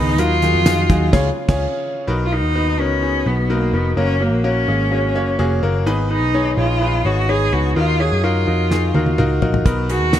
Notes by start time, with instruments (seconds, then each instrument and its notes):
Already playing: picked electric bass C#2, steel-string acoustic guitar G#2 D#3 G#3 B3 D#4 B4, grand piano G#2 B3 D#4 G#4 A#4 B4, cello D#4
0.18 picked electric bass D#2, grand piano D#3 D#4 F4 F#4 A#4, steel-string acoustic guitar F#3 D#4 F4 A#4, cello F4, closed hi-hat
0.42 steel-string acoustic guitar D#3 F#3 D#4 F4 A#4, grand piano D#4 F4 F#4 G#4, snare, closed hi-hat
0.54 picked electric bass F2
0.66 grand piano D#4 F4 F#4 G#4, snare, closed hi-hat, tambourine
0.89 picked electric bass D#2, steel-string acoustic guitar D#3 F#3 D#4 F4 A#4, grand piano D#4 F4 F#4 G#4, kick, closed hi-hat
1.13 picked electric bass C#2, grand piano C#3 C#4 F4 G#4 C#5, steel-string acoustic guitar G#3 C#4 F4 G#4, kick, snare, crash
1.48 picked electric bass C#2, grand piano C#4 F4 G#4 C#5, steel-string acoustic guitar C#4 F4 G#4, kick, snare, crash
2.07 picked electric bass B1, grand piano B2 B3 D#4 F#4 A#4
2.25 cello F4
2.31 grand piano B3 D#4 F#4 A#4, cello D#4
2.43 picked electric bass D#2
2.55 grand piano B3 D#4 F#4 B4
2.79 picked electric bass C#2, grand piano B3 D#4 F#4 A#4, cello C#4
3.03 grand piano B3 D#4 F#4 G#4
3.26 picked electric bass B1, grand piano B3 D#4 F#4 B4, cello B3
3.50 cello A#3, grand piano B3 D#4 F#4 A#4
3.73 picked electric bass F1, grand piano B3 D#4 F#4 A#4, cello B3
3.97 picked electric bass F#1, grand piano A#3 C#4 F#4 A#4, cello C#4
4.21 grand piano A#3 C#4 F#4 A#4, cello A#3
4.33 picked electric bass A#1
4.44 grand piano A#3 C#4 F#4 A#4, cello C#4
4.68 picked electric bass G#1, grand piano A#3 C#4 F#4 G#4
4.91 grand piano A#3 C#4 F#4 G#4
5.15 picked electric bass F#1, grand piano A#3 C#4 F#4 C#5
5.39 picked electric bass F1, grand piano A#3 C#4 F#4 G#4
5.63 picked electric bass F#1, grand piano A#3 C#4 F#4 A#4
5.86 picked electric bass G#1, grand piano G#2 B3 D#4 G#4 B4
6.10 grand piano B3 D#4 G#4 B4, cello D#4
6.22 picked electric bass B1
6.34 grand piano B3 D#4 G#4 C#5
6.57 picked electric bass A#1, grand piano B3 D#4 G#4 C#5, cello F4
6.82 grand piano B3 D#4 G#4 B4
7.05 picked electric bass G#1, grand piano B3 D#4 G#4 C#5, cello F#4
7.29 grand piano B3 D#4 G#4 C#5, cello G#4
7.52 picked electric bass C#2, grand piano B3 D#4 G#4 B4, cello F#4
7.76 picked electric bass D#2, grand piano D#3 D#4 F4 F#4 A#4, cello F4
7.99 grand piano D#4 F4 F#4 C#5, cello G#4
8.12 picked electric bass F#2
8.23 grand piano D#4 F4 F#4 A#4, cello F4
8.47 picked electric bass F2, grand piano D#4 F4 F#4 A#4
8.71 grand piano D#4 F4 F#4 G#4, snare
8.94 picked electric bass D#2, grand piano D#4 F4 F#4 A#4 A#5, high tom
9.06 high tom
9.18 picked electric bass C#2, grand piano D#4 F4 F#4 A#4 F#5, mid tom
9.42 picked electric bass A#1, grand piano D#4 F4 F#4 A#4 D#5, floor tom
9.54 floor tom
9.65 picked electric bass B1, grand piano B2 B3 D#4 F#4 A#4, kick, closed hi-hat
9.89 grand piano B3 D#4 F#4 G#4, cello F#4, closed hi-hat
10.01 picked electric bass D#2
10.13 grand piano B3 D#4 F#4 B4, snare, closed hi-hat